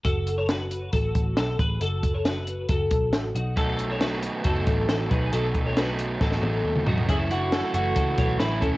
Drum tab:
HH |x-x-x-x-x-x-x-x-|x-x-x-x-x-x-x-x-|x-x-x-x-x-x-x-x-|x-x-x-x---------|
SD |----o-------o---|----o-------o---|----o-------o---|----o---oo------|
T1 |----------------|----------------|----------------|----------o-----|
T2 |----------------|----------------|----------------|-------------o--|
FT |----------------|----------------|----------------|--------------oo|
BD |o-------o-o---o-|--o-----o-o-----|o-------o-o---o-|--o-----o-------|

HH |x-x-x-x-x-x-x-x-|
SD |----o-------o---|
T1 |----------------|
T2 |----------------|
FT |----------------|
BD |o-------o-o---o-|